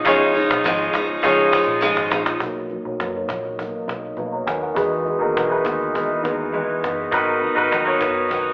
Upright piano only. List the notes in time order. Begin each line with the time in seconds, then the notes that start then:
Already playing: D#4 F4 G#4 C#5
0.05 D#4 F4 G#4 C#5
1.23 D#4 F4 G#4 C#5
2.41 D#4 F#4 A#4 C#5
2.85 D#4 F#4 A#4 C#5
3.14 D#4 F#4 A#4 C#5
4.32 C#5 A#5
4.47 B4 G#5
4.62 A#4 F#5
4.75 D#4 F#4 G#4 B4
5.19 D#4 F#4 G#4 A#4
5.49 D#4 F#4 G#4 B4
7.11 D#4 F#4 A#4 B4
7.55 D#4 F#4 A#4 B4
7.84 D#4 F#4 A#4 C#5